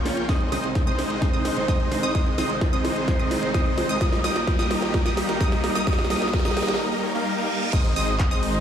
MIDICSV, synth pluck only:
0, 0, Header, 1, 2, 480
1, 0, Start_track
1, 0, Key_signature, -4, "major"
1, 0, Tempo, 465116
1, 297, Time_signature, 4, 2, 24, 8
1, 8878, End_track
2, 0, Start_track
2, 0, Title_t, "Synth pluck"
2, 0, Program_c, 0, 84
2, 0, Note_on_c, 0, 91, 91
2, 269, Note_off_c, 0, 91, 0
2, 298, Note_on_c, 0, 87, 100
2, 509, Note_off_c, 0, 87, 0
2, 538, Note_on_c, 0, 87, 96
2, 698, Note_off_c, 0, 87, 0
2, 898, Note_on_c, 0, 87, 104
2, 1349, Note_off_c, 0, 87, 0
2, 1377, Note_on_c, 0, 87, 89
2, 1709, Note_off_c, 0, 87, 0
2, 1737, Note_on_c, 0, 87, 102
2, 2069, Note_off_c, 0, 87, 0
2, 2097, Note_on_c, 0, 87, 106
2, 2189, Note_off_c, 0, 87, 0
2, 2217, Note_on_c, 0, 87, 99
2, 2429, Note_off_c, 0, 87, 0
2, 2457, Note_on_c, 0, 87, 98
2, 2618, Note_off_c, 0, 87, 0
2, 2817, Note_on_c, 0, 87, 98
2, 3268, Note_off_c, 0, 87, 0
2, 3296, Note_on_c, 0, 87, 90
2, 3628, Note_off_c, 0, 87, 0
2, 3657, Note_on_c, 0, 87, 100
2, 3988, Note_off_c, 0, 87, 0
2, 4017, Note_on_c, 0, 87, 107
2, 4109, Note_off_c, 0, 87, 0
2, 4137, Note_on_c, 0, 87, 102
2, 4349, Note_off_c, 0, 87, 0
2, 4377, Note_on_c, 0, 87, 106
2, 4538, Note_off_c, 0, 87, 0
2, 4737, Note_on_c, 0, 87, 100
2, 5189, Note_off_c, 0, 87, 0
2, 5217, Note_on_c, 0, 87, 90
2, 5549, Note_off_c, 0, 87, 0
2, 5578, Note_on_c, 0, 87, 102
2, 5909, Note_off_c, 0, 87, 0
2, 5937, Note_on_c, 0, 87, 109
2, 6029, Note_off_c, 0, 87, 0
2, 6058, Note_on_c, 0, 87, 99
2, 6269, Note_off_c, 0, 87, 0
2, 6297, Note_on_c, 0, 87, 97
2, 6458, Note_off_c, 0, 87, 0
2, 6658, Note_on_c, 0, 87, 100
2, 7018, Note_off_c, 0, 87, 0
2, 7978, Note_on_c, 0, 87, 100
2, 8189, Note_off_c, 0, 87, 0
2, 8218, Note_on_c, 0, 87, 100
2, 8378, Note_off_c, 0, 87, 0
2, 8578, Note_on_c, 0, 87, 97
2, 8878, Note_off_c, 0, 87, 0
2, 8878, End_track
0, 0, End_of_file